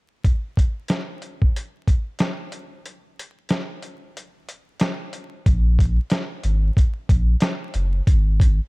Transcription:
0.24 kick, closed hi-hat
0.57 kick, closed hi-hat
0.88 snare, closed hi-hat
1.22 closed hi-hat
1.42 kick
1.56 closed hi-hat
1.88 kick, closed hi-hat
2.19 snare, closed hi-hat
2.52 closed hi-hat
2.86 closed hi-hat
3.19 closed hi-hat
3.49 snare, closed hi-hat
3.82 closed hi-hat
4.17 closed hi-hat
4.49 closed hi-hat
4.80 snare, closed hi-hat
5.13 closed hi-hat
5.46 A#1, kick, closed hi-hat
5.79 kick, closed hi-hat
6.10 snare, closed hi-hat
6.44 G#1, closed hi-hat
6.77 kick, closed hi-hat
7.09 A#1, kick, closed hi-hat
7.41 snare, closed hi-hat
7.74 F#1, closed hi-hat
8.07 G#1, kick, closed hi-hat
8.40 kick, closed hi-hat

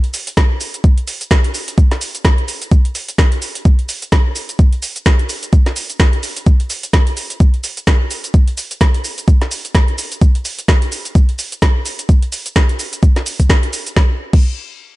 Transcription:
0.04 closed hi-hat
0.14 open hi-hat, shaker
0.27 closed hi-hat, shaker
0.37 kick, snare, shaker
0.61 open hi-hat, shaker
0.74 closed hi-hat, shaker
0.84 kick, shaker
0.98 closed hi-hat
1.07 open hi-hat, shaker
1.21 closed hi-hat, shaker
1.31 kick, snare, shaker
1.44 closed hi-hat
1.54 open hi-hat, shaker
1.68 closed hi-hat, shaker
1.78 kick, shaker
1.91 snare, closed hi-hat
2.01 open hi-hat, shaker
2.15 closed hi-hat, shaker
2.25 kick, snare, shaker
2.38 closed hi-hat
2.48 open hi-hat, shaker
2.62 closed hi-hat, shaker
2.72 kick, shaker
2.85 closed hi-hat
2.95 open hi-hat, shaker
3.09 closed hi-hat, shaker
3.18 kick, snare, shaker
3.32 closed hi-hat
3.42 open hi-hat, shaker
3.55 closed hi-hat, shaker
3.65 kick, shaker
3.79 closed hi-hat
3.89 open hi-hat, shaker
4.02 closed hi-hat, shaker
4.12 kick, snare, shaker
4.36 open hi-hat, shaker
4.49 closed hi-hat, shaker
4.59 kick, shaker
4.73 closed hi-hat
4.82 open hi-hat, shaker
4.96 closed hi-hat, shaker
5.06 kick, snare, shaker
5.19 closed hi-hat
5.29 open hi-hat, shaker
5.43 closed hi-hat, shaker
5.53 kick, shaker
5.66 snare, closed hi-hat
5.76 open hi-hat, shaker
5.90 closed hi-hat, shaker
6.00 kick, snare, shaker
6.13 closed hi-hat
6.23 open hi-hat, shaker
6.37 closed hi-hat, shaker
6.47 kick, shaker
6.60 closed hi-hat
6.70 open hi-hat, shaker
6.83 closed hi-hat, shaker
6.93 kick, snare, shaker
7.07 closed hi-hat
7.17 open hi-hat, shaker
7.30 closed hi-hat, shaker
7.40 kick, shaker
7.54 closed hi-hat
7.64 open hi-hat, shaker
7.77 closed hi-hat, shaker
7.87 kick, snare, shaker
8.11 open hi-hat, shaker
8.24 closed hi-hat, shaker
8.34 kick, shaker
8.48 closed hi-hat
8.58 open hi-hat, shaker
8.71 closed hi-hat, shaker
8.81 kick, snare, shaker
8.94 closed hi-hat
9.04 open hi-hat, shaker
9.18 closed hi-hat, shaker
9.28 kick, shaker
9.41 snare, closed hi-hat
9.51 open hi-hat, shaker
9.65 closed hi-hat, shaker
9.75 kick, snare, shaker
9.88 closed hi-hat
9.98 open hi-hat, shaker
10.12 closed hi-hat, shaker
10.22 kick, shaker
10.35 closed hi-hat
10.45 open hi-hat, shaker
10.59 closed hi-hat, shaker
10.68 kick, snare, shaker
10.82 closed hi-hat
10.92 open hi-hat, shaker
11.05 closed hi-hat, shaker
11.15 kick, shaker
11.29 closed hi-hat
11.39 open hi-hat, shaker
11.52 closed hi-hat, shaker
11.62 kick, snare, shaker
11.86 open hi-hat, shaker
11.99 closed hi-hat, shaker
12.09 kick, shaker
12.22 closed hi-hat
12.32 open hi-hat, shaker
12.46 closed hi-hat, shaker
12.56 kick, snare, shaker
12.69 closed hi-hat
12.79 open hi-hat, shaker
12.93 closed hi-hat, shaker
13.03 kick, shaker
13.16 snare, closed hi-hat
13.26 open hi-hat, shaker
13.40 kick, closed hi-hat, shaker
13.50 kick, snare, shaker
13.63 closed hi-hat
13.73 open hi-hat, shaker
13.87 closed hi-hat, shaker
13.96 kick, snare
14.33 kick, crash

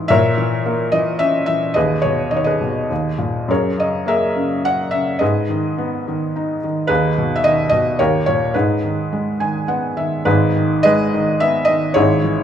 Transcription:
Already playing: G#2 E3 E4 G#4 C#5
0.08 A#2 A#4 C#5 E5
0.37 E3
0.66 A#3
0.92 E3 D#5
1.19 C#4 E5
1.46 E3 E5
1.74 D#2 G#4 B4 D#5
2.02 B2 C#5
2.31 D#3 D#5
2.36 C#5
2.44 G#4 B4 D#5
2.61 B2
2.90 D#2
3.18 A#2
3.48 F#2 G#4 A#4 C#5
3.78 C#3 D#5
4.06 A#3 G#4 A#4 E5
4.36 C#3
4.65 C#4 F#5
4.91 C#3 E5
5.19 G#2 G#4 B4 D#5
5.49 D#3
5.78 B3
6.08 D#3
6.36 D#4
6.64 D#3
6.87 D#2 D#4 G#4 B4
7.18 B2
7.36 E5
7.44 D#3 D#5
7.69 B2 D#5
7.99 D#2 G4 A#4 C#5
8.26 A#2 C#5
8.54 G#2 D#4 G#4 B4
8.84 D#3
9.13 G#3
9.40 D#3 G#5
9.68 B3 F#5
9.97 D#3 E5
10.25 G#1 G#2 D#4 G#4 B4
10.55 D#3
10.83 G#3 G#4 B4 D#5
11.14 D#3
11.40 B3 E5
11.65 D#5
11.70 D#3
11.94 G#1 G#2 E4 G#4 C#5
12.24 E3

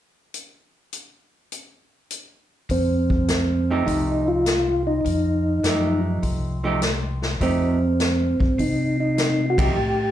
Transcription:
0.34 closed hi-hat
0.93 closed hi-hat
1.52 closed hi-hat
2.11 closed hi-hat
2.69 F2 C4, kick, open hi-hat
3.10 kick
3.28 snare, closed hi-hat
3.71 F3 A3 D#4 G4
3.86 C2 D#4, kick, open hi-hat
4.28 F4
4.46 snare, closed hi-hat
4.87 D#4
5.05 F2, kick, open hi-hat
5.64 F#2 F3 A3 D#4 G4, snare, closed hi-hat
6.23 C2, kick, open hi-hat
6.64 F3 A3 D#4 G4
6.82 snare, closed hi-hat
7.22 snare
7.40 F2 F3 A3 C4 D#4 G4, kick, open hi-hat
8.00 snare, closed hi-hat
8.40 F2, kick
8.58 C3 D#4, kick, open hi-hat
9.00 D#4
9.18 snare, closed hi-hat
9.50 F#4
9.58 F3 A3 D#4 G4, kick, ride
9.76 A2

